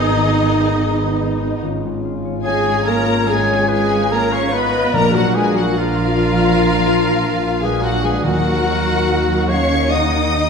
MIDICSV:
0, 0, Header, 1, 11, 480
1, 0, Start_track
1, 0, Key_signature, -6, "minor"
1, 0, Tempo, 834492
1, 932, Time_signature, 4, 2, 24, 8
1, 2371, Tempo, 825309
1, 6078, End_track
2, 0, Start_track
2, 0, Title_t, "Violin section"
2, 0, Program_c, 0, 48
2, 0, Note_on_c, 0, 75, 97
2, 936, Note_off_c, 0, 75, 0
2, 1407, Note_on_c, 0, 80, 98
2, 1631, Note_off_c, 0, 80, 0
2, 1644, Note_on_c, 0, 82, 98
2, 1888, Note_off_c, 0, 82, 0
2, 1895, Note_on_c, 0, 80, 95
2, 2134, Note_off_c, 0, 80, 0
2, 2145, Note_on_c, 0, 80, 96
2, 2373, Note_off_c, 0, 80, 0
2, 2381, Note_on_c, 0, 82, 93
2, 2496, Note_off_c, 0, 82, 0
2, 2504, Note_on_c, 0, 85, 85
2, 2617, Note_off_c, 0, 85, 0
2, 2628, Note_on_c, 0, 83, 96
2, 2857, Note_off_c, 0, 83, 0
2, 2857, Note_on_c, 0, 82, 97
2, 2968, Note_off_c, 0, 82, 0
2, 2975, Note_on_c, 0, 78, 88
2, 3087, Note_off_c, 0, 78, 0
2, 3096, Note_on_c, 0, 80, 92
2, 3208, Note_off_c, 0, 80, 0
2, 3216, Note_on_c, 0, 78, 87
2, 3331, Note_off_c, 0, 78, 0
2, 3331, Note_on_c, 0, 77, 103
2, 4406, Note_off_c, 0, 77, 0
2, 4413, Note_on_c, 0, 80, 87
2, 4527, Note_off_c, 0, 80, 0
2, 4527, Note_on_c, 0, 78, 94
2, 4645, Note_off_c, 0, 78, 0
2, 4648, Note_on_c, 0, 80, 83
2, 4766, Note_off_c, 0, 80, 0
2, 4768, Note_on_c, 0, 78, 102
2, 5491, Note_off_c, 0, 78, 0
2, 5495, Note_on_c, 0, 85, 104
2, 5728, Note_off_c, 0, 85, 0
2, 5736, Note_on_c, 0, 87, 96
2, 6078, Note_off_c, 0, 87, 0
2, 6078, End_track
3, 0, Start_track
3, 0, Title_t, "Flute"
3, 0, Program_c, 1, 73
3, 0, Note_on_c, 1, 68, 96
3, 910, Note_off_c, 1, 68, 0
3, 1400, Note_on_c, 1, 73, 91
3, 1627, Note_off_c, 1, 73, 0
3, 1639, Note_on_c, 1, 73, 89
3, 1881, Note_off_c, 1, 73, 0
3, 1889, Note_on_c, 1, 73, 91
3, 2118, Note_on_c, 1, 71, 76
3, 2127, Note_off_c, 1, 73, 0
3, 2359, Note_on_c, 1, 73, 88
3, 2367, Note_off_c, 1, 71, 0
3, 2483, Note_on_c, 1, 77, 78
3, 2492, Note_off_c, 1, 73, 0
3, 2611, Note_on_c, 1, 75, 89
3, 2620, Note_off_c, 1, 77, 0
3, 2837, Note_on_c, 1, 74, 92
3, 2846, Note_off_c, 1, 75, 0
3, 2949, Note_on_c, 1, 70, 78
3, 2958, Note_off_c, 1, 74, 0
3, 3078, Note_on_c, 1, 71, 81
3, 3087, Note_off_c, 1, 70, 0
3, 3196, Note_on_c, 1, 70, 72
3, 3205, Note_off_c, 1, 71, 0
3, 3319, Note_off_c, 1, 70, 0
3, 3323, Note_on_c, 1, 70, 94
3, 4255, Note_off_c, 1, 70, 0
3, 4409, Note_on_c, 1, 71, 73
3, 4515, Note_on_c, 1, 70, 75
3, 4524, Note_off_c, 1, 71, 0
3, 4638, Note_off_c, 1, 70, 0
3, 4649, Note_on_c, 1, 71, 72
3, 4765, Note_on_c, 1, 70, 87
3, 4774, Note_off_c, 1, 71, 0
3, 5494, Note_on_c, 1, 77, 86
3, 5502, Note_off_c, 1, 70, 0
3, 5738, Note_on_c, 1, 78, 82
3, 5746, Note_off_c, 1, 77, 0
3, 6055, Note_off_c, 1, 78, 0
3, 6078, End_track
4, 0, Start_track
4, 0, Title_t, "Harp"
4, 0, Program_c, 2, 46
4, 0, Note_on_c, 2, 44, 71
4, 0, Note_on_c, 2, 51, 56
4, 0, Note_on_c, 2, 63, 64
4, 0, Note_on_c, 2, 68, 72
4, 0, Note_on_c, 2, 71, 67
4, 0, Note_on_c, 2, 75, 67
4, 0, Note_on_c, 2, 83, 63
4, 83, Note_off_c, 2, 51, 0
4, 90, Note_on_c, 2, 51, 60
4, 204, Note_off_c, 2, 63, 0
4, 211, Note_on_c, 2, 63, 59
4, 326, Note_off_c, 2, 68, 0
4, 333, Note_on_c, 2, 68, 66
4, 449, Note_off_c, 2, 75, 0
4, 456, Note_on_c, 2, 75, 68
4, 565, Note_off_c, 2, 83, 0
4, 572, Note_on_c, 2, 83, 68
4, 686, Note_off_c, 2, 75, 0
4, 693, Note_on_c, 2, 75, 69
4, 808, Note_off_c, 2, 71, 0
4, 815, Note_on_c, 2, 71, 66
4, 929, Note_off_c, 2, 44, 0
4, 936, Note_on_c, 2, 44, 81
4, 952, Note_off_c, 2, 51, 0
4, 953, Note_off_c, 2, 63, 0
4, 953, Note_off_c, 2, 71, 0
4, 953, Note_off_c, 2, 75, 0
4, 953, Note_off_c, 2, 83, 0
4, 1058, Note_on_c, 2, 56, 49
4, 1177, Note_on_c, 2, 65, 58
4, 1295, Note_on_c, 2, 73, 63
4, 1410, Note_on_c, 2, 77, 75
4, 1532, Note_on_c, 2, 85, 61
4, 1649, Note_off_c, 2, 77, 0
4, 1656, Note_on_c, 2, 77, 61
4, 1765, Note_off_c, 2, 73, 0
4, 1772, Note_on_c, 2, 73, 63
4, 1888, Note_off_c, 2, 44, 0
4, 1895, Note_on_c, 2, 44, 67
4, 2010, Note_off_c, 2, 56, 0
4, 2017, Note_on_c, 2, 56, 59
4, 2131, Note_off_c, 2, 65, 0
4, 2138, Note_on_c, 2, 65, 57
4, 2249, Note_off_c, 2, 73, 0
4, 2256, Note_on_c, 2, 73, 66
4, 2369, Note_off_c, 2, 77, 0
4, 2376, Note_on_c, 2, 77, 68
4, 2486, Note_off_c, 2, 85, 0
4, 2493, Note_on_c, 2, 85, 71
4, 2579, Note_off_c, 2, 68, 0
4, 2604, Note_off_c, 2, 77, 0
4, 2611, Note_on_c, 2, 77, 72
4, 2723, Note_off_c, 2, 73, 0
4, 2730, Note_on_c, 2, 73, 59
4, 2847, Note_on_c, 2, 46, 73
4, 2867, Note_off_c, 2, 73, 0
4, 2868, Note_off_c, 2, 85, 0
4, 2869, Note_off_c, 2, 44, 0
4, 2869, Note_off_c, 2, 56, 0
4, 2967, Note_on_c, 2, 53, 51
4, 3080, Note_off_c, 2, 65, 0
4, 3087, Note_on_c, 2, 65, 58
4, 3206, Note_on_c, 2, 70, 67
4, 3321, Note_off_c, 2, 77, 0
4, 3328, Note_on_c, 2, 77, 67
4, 3449, Note_on_c, 2, 86, 57
4, 3558, Note_off_c, 2, 77, 0
4, 3565, Note_on_c, 2, 77, 58
4, 3684, Note_on_c, 2, 74, 56
4, 3796, Note_off_c, 2, 46, 0
4, 3803, Note_on_c, 2, 46, 70
4, 3917, Note_off_c, 2, 53, 0
4, 3924, Note_on_c, 2, 53, 54
4, 4035, Note_off_c, 2, 65, 0
4, 4042, Note_on_c, 2, 65, 58
4, 4156, Note_off_c, 2, 70, 0
4, 4163, Note_on_c, 2, 70, 63
4, 4275, Note_off_c, 2, 77, 0
4, 4282, Note_on_c, 2, 77, 69
4, 4395, Note_off_c, 2, 86, 0
4, 4402, Note_on_c, 2, 86, 65
4, 4514, Note_off_c, 2, 77, 0
4, 4521, Note_on_c, 2, 77, 67
4, 4638, Note_off_c, 2, 74, 0
4, 4645, Note_on_c, 2, 74, 60
4, 4768, Note_on_c, 2, 51, 70
4, 4780, Note_off_c, 2, 46, 0
4, 4780, Note_off_c, 2, 65, 0
4, 4781, Note_off_c, 2, 53, 0
4, 4782, Note_off_c, 2, 77, 0
4, 4782, Note_off_c, 2, 86, 0
4, 4784, Note_off_c, 2, 74, 0
4, 4889, Note_on_c, 2, 58, 49
4, 5015, Note_on_c, 2, 75, 54
4, 5129, Note_off_c, 2, 70, 0
4, 5136, Note_on_c, 2, 70, 65
4, 5257, Note_on_c, 2, 87, 70
4, 5376, Note_on_c, 2, 82, 61
4, 5492, Note_off_c, 2, 87, 0
4, 5499, Note_on_c, 2, 87, 61
4, 5616, Note_off_c, 2, 70, 0
4, 5623, Note_on_c, 2, 70, 56
4, 5737, Note_off_c, 2, 51, 0
4, 5744, Note_on_c, 2, 51, 58
4, 5856, Note_off_c, 2, 58, 0
4, 5863, Note_on_c, 2, 58, 55
4, 5975, Note_off_c, 2, 75, 0
4, 5982, Note_on_c, 2, 75, 59
4, 6078, Note_off_c, 2, 51, 0
4, 6078, Note_off_c, 2, 58, 0
4, 6078, Note_off_c, 2, 70, 0
4, 6078, Note_off_c, 2, 75, 0
4, 6078, Note_off_c, 2, 82, 0
4, 6078, Note_off_c, 2, 87, 0
4, 6078, End_track
5, 0, Start_track
5, 0, Title_t, "Oboe"
5, 0, Program_c, 3, 68
5, 0, Note_on_c, 3, 63, 97
5, 938, Note_off_c, 3, 63, 0
5, 1400, Note_on_c, 3, 68, 82
5, 1642, Note_on_c, 3, 70, 88
5, 1650, Note_off_c, 3, 68, 0
5, 1881, Note_on_c, 3, 68, 93
5, 1890, Note_off_c, 3, 70, 0
5, 2122, Note_off_c, 3, 68, 0
5, 2125, Note_on_c, 3, 68, 88
5, 2369, Note_on_c, 3, 70, 102
5, 2378, Note_off_c, 3, 68, 0
5, 2486, Note_on_c, 3, 73, 89
5, 2495, Note_off_c, 3, 70, 0
5, 2608, Note_on_c, 3, 71, 85
5, 2616, Note_off_c, 3, 73, 0
5, 2849, Note_on_c, 3, 70, 93
5, 2857, Note_off_c, 3, 71, 0
5, 2967, Note_on_c, 3, 66, 80
5, 2976, Note_off_c, 3, 70, 0
5, 3085, Note_on_c, 3, 68, 80
5, 3094, Note_off_c, 3, 66, 0
5, 3212, Note_on_c, 3, 66, 71
5, 3221, Note_off_c, 3, 68, 0
5, 3331, Note_on_c, 3, 65, 94
5, 3340, Note_off_c, 3, 66, 0
5, 4404, Note_off_c, 3, 65, 0
5, 4408, Note_on_c, 3, 68, 75
5, 4520, Note_on_c, 3, 66, 77
5, 4528, Note_off_c, 3, 68, 0
5, 4643, Note_on_c, 3, 68, 79
5, 4652, Note_off_c, 3, 66, 0
5, 4763, Note_on_c, 3, 66, 91
5, 4772, Note_off_c, 3, 68, 0
5, 5494, Note_on_c, 3, 73, 79
5, 5502, Note_off_c, 3, 66, 0
5, 5735, Note_on_c, 3, 75, 77
5, 5744, Note_off_c, 3, 73, 0
5, 6054, Note_off_c, 3, 75, 0
5, 6078, End_track
6, 0, Start_track
6, 0, Title_t, "Viola section"
6, 0, Program_c, 4, 48
6, 0, Note_on_c, 4, 63, 89
6, 913, Note_off_c, 4, 63, 0
6, 1408, Note_on_c, 4, 68, 87
6, 1631, Note_off_c, 4, 68, 0
6, 1647, Note_on_c, 4, 70, 93
6, 1887, Note_on_c, 4, 68, 80
6, 1889, Note_off_c, 4, 70, 0
6, 2126, Note_off_c, 4, 68, 0
6, 2132, Note_on_c, 4, 68, 85
6, 2366, Note_off_c, 4, 68, 0
6, 2369, Note_on_c, 4, 70, 82
6, 2490, Note_off_c, 4, 70, 0
6, 2492, Note_on_c, 4, 73, 84
6, 2604, Note_on_c, 4, 71, 87
6, 2611, Note_off_c, 4, 73, 0
6, 2840, Note_off_c, 4, 71, 0
6, 2840, Note_on_c, 4, 70, 100
6, 2961, Note_on_c, 4, 66, 81
6, 2962, Note_off_c, 4, 70, 0
6, 3076, Note_on_c, 4, 68, 83
6, 3082, Note_off_c, 4, 66, 0
6, 3194, Note_on_c, 4, 66, 75
6, 3200, Note_off_c, 4, 68, 0
6, 3312, Note_on_c, 4, 65, 91
6, 3320, Note_off_c, 4, 66, 0
6, 4396, Note_off_c, 4, 65, 0
6, 4401, Note_on_c, 4, 68, 77
6, 4521, Note_off_c, 4, 68, 0
6, 4522, Note_on_c, 4, 66, 69
6, 4636, Note_on_c, 4, 68, 69
6, 4642, Note_off_c, 4, 66, 0
6, 4757, Note_off_c, 4, 68, 0
6, 4764, Note_on_c, 4, 66, 84
6, 5475, Note_off_c, 4, 66, 0
6, 5492, Note_on_c, 4, 73, 84
6, 5731, Note_off_c, 4, 73, 0
6, 5732, Note_on_c, 4, 75, 76
6, 6078, Note_off_c, 4, 75, 0
6, 6078, End_track
7, 0, Start_track
7, 0, Title_t, "Violin section"
7, 0, Program_c, 5, 48
7, 0, Note_on_c, 5, 63, 90
7, 938, Note_off_c, 5, 63, 0
7, 1408, Note_on_c, 5, 68, 85
7, 1631, Note_off_c, 5, 68, 0
7, 1650, Note_on_c, 5, 70, 74
7, 1886, Note_off_c, 5, 70, 0
7, 1896, Note_on_c, 5, 68, 83
7, 2123, Note_off_c, 5, 68, 0
7, 2130, Note_on_c, 5, 68, 85
7, 2365, Note_off_c, 5, 68, 0
7, 2365, Note_on_c, 5, 70, 84
7, 2485, Note_off_c, 5, 70, 0
7, 2486, Note_on_c, 5, 73, 78
7, 2603, Note_on_c, 5, 71, 94
7, 2608, Note_off_c, 5, 73, 0
7, 2842, Note_on_c, 5, 70, 92
7, 2844, Note_off_c, 5, 71, 0
7, 2963, Note_off_c, 5, 70, 0
7, 2970, Note_on_c, 5, 66, 80
7, 3086, Note_on_c, 5, 68, 82
7, 3087, Note_off_c, 5, 66, 0
7, 3205, Note_off_c, 5, 68, 0
7, 3214, Note_on_c, 5, 66, 72
7, 3325, Note_on_c, 5, 65, 89
7, 3330, Note_off_c, 5, 66, 0
7, 4402, Note_off_c, 5, 65, 0
7, 4405, Note_on_c, 5, 68, 72
7, 4522, Note_on_c, 5, 66, 78
7, 4523, Note_off_c, 5, 68, 0
7, 4640, Note_off_c, 5, 66, 0
7, 4642, Note_on_c, 5, 68, 73
7, 4760, Note_on_c, 5, 66, 91
7, 4763, Note_off_c, 5, 68, 0
7, 5488, Note_off_c, 5, 66, 0
7, 5493, Note_on_c, 5, 73, 83
7, 5732, Note_off_c, 5, 73, 0
7, 5741, Note_on_c, 5, 75, 78
7, 6078, Note_off_c, 5, 75, 0
7, 6078, End_track
8, 0, Start_track
8, 0, Title_t, "French horn section"
8, 0, Program_c, 6, 60
8, 0, Note_on_c, 6, 59, 84
8, 0, Note_on_c, 6, 63, 91
8, 912, Note_off_c, 6, 63, 0
8, 933, Note_on_c, 6, 65, 80
8, 934, Note_off_c, 6, 59, 0
8, 936, Note_on_c, 6, 61, 77
8, 2753, Note_off_c, 6, 61, 0
8, 2753, Note_off_c, 6, 65, 0
8, 2852, Note_on_c, 6, 65, 82
8, 2853, Note_on_c, 6, 62, 76
8, 4741, Note_off_c, 6, 65, 0
8, 4742, Note_off_c, 6, 62, 0
8, 4767, Note_on_c, 6, 63, 90
8, 4769, Note_on_c, 6, 58, 86
8, 6078, Note_off_c, 6, 58, 0
8, 6078, Note_off_c, 6, 63, 0
8, 6078, End_track
9, 0, Start_track
9, 0, Title_t, "Cello section"
9, 0, Program_c, 7, 48
9, 0, Note_on_c, 7, 51, 82
9, 937, Note_off_c, 7, 51, 0
9, 1412, Note_on_c, 7, 56, 85
9, 1633, Note_off_c, 7, 56, 0
9, 1650, Note_on_c, 7, 58, 82
9, 1891, Note_off_c, 7, 58, 0
9, 1892, Note_on_c, 7, 56, 75
9, 2127, Note_off_c, 7, 56, 0
9, 2134, Note_on_c, 7, 56, 89
9, 2367, Note_off_c, 7, 56, 0
9, 2367, Note_on_c, 7, 58, 87
9, 2488, Note_on_c, 7, 61, 88
9, 2489, Note_off_c, 7, 58, 0
9, 2606, Note_off_c, 7, 61, 0
9, 2608, Note_on_c, 7, 59, 84
9, 2845, Note_on_c, 7, 58, 90
9, 2847, Note_off_c, 7, 59, 0
9, 2965, Note_off_c, 7, 58, 0
9, 2965, Note_on_c, 7, 54, 78
9, 3079, Note_on_c, 7, 56, 79
9, 3085, Note_off_c, 7, 54, 0
9, 3202, Note_off_c, 7, 56, 0
9, 3202, Note_on_c, 7, 54, 73
9, 3322, Note_on_c, 7, 53, 85
9, 3324, Note_off_c, 7, 54, 0
9, 4401, Note_off_c, 7, 53, 0
9, 4403, Note_on_c, 7, 56, 75
9, 4522, Note_off_c, 7, 56, 0
9, 4524, Note_on_c, 7, 54, 74
9, 4640, Note_off_c, 7, 54, 0
9, 4642, Note_on_c, 7, 56, 75
9, 4763, Note_off_c, 7, 56, 0
9, 4766, Note_on_c, 7, 54, 81
9, 5490, Note_off_c, 7, 54, 0
9, 5497, Note_on_c, 7, 61, 85
9, 5734, Note_off_c, 7, 61, 0
9, 5735, Note_on_c, 7, 63, 77
9, 6078, Note_off_c, 7, 63, 0
9, 6078, End_track
10, 0, Start_track
10, 0, Title_t, "Timpani"
10, 0, Program_c, 8, 47
10, 2843, Note_on_c, 8, 46, 82
10, 3541, Note_off_c, 8, 46, 0
10, 4763, Note_on_c, 8, 51, 85
10, 5466, Note_off_c, 8, 51, 0
10, 6078, End_track
11, 0, Start_track
11, 0, Title_t, "Double bass section"
11, 0, Program_c, 10, 48
11, 0, Note_on_c, 10, 32, 84
11, 912, Note_off_c, 10, 32, 0
11, 936, Note_on_c, 10, 32, 72
11, 2826, Note_off_c, 10, 32, 0
11, 2844, Note_on_c, 10, 34, 75
11, 4737, Note_off_c, 10, 34, 0
11, 4764, Note_on_c, 10, 39, 78
11, 6078, Note_off_c, 10, 39, 0
11, 6078, End_track
0, 0, End_of_file